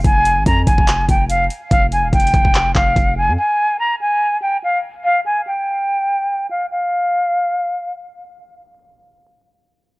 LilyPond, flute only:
\new Staff \with { instrumentName = "Flute" } { \time 4/4 \key f \minor \tempo 4 = 144 aes''4 bes''8 aes''4 g''8 f''8 r8 | f''8 aes''8 g''4. f''4 aes''8 | aes''4 bes''8 aes''4 g''8 f''8 r8 | f''8 aes''8 g''2~ g''8 f''8 |
f''2. r4 | r1 | }